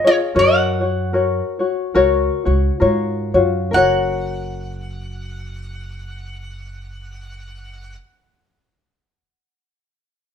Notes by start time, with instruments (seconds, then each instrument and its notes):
0.04 ukulele F4 G#4 C#5, resonator guitar played with a steel bar C#5
0.35 upright bass F#2, ukulele F#4 A#4 C#5
0.39 resonator guitar played with a steel bar F#5
0.81 ukulele F#4 C#5
1.13 ukulele F#4 A#4 C#5
1.59 ukulele F#4 C#5
1.94 upright bass C#2, ukulele F#4 A#4 C#5
2.45 upright bass C#2, ukulele F#4 C#5
2.80 upright bass G#2, ukulele F4 F#4 A#4 C#5
3.34 upright bass F#2, ukulele F4 F#4 C#5
3.71 upright bass F#1, ukulele A#4, resonator guitar played with a steel bar F#5
3.75 ukulele F#4 C#5